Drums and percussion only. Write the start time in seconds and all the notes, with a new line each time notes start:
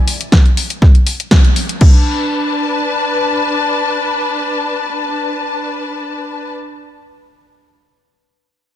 0.08 open hi-hat
0.21 closed hi-hat
0.32 kick, snare
0.46 closed hi-hat
0.57 open hi-hat
0.70 closed hi-hat
0.82 kick, snare
0.95 closed hi-hat
1.07 open hi-hat
1.20 closed hi-hat
1.31 kick, snare
1.45 closed hi-hat
1.56 open hi-hat
1.69 closed hi-hat
1.81 kick, crash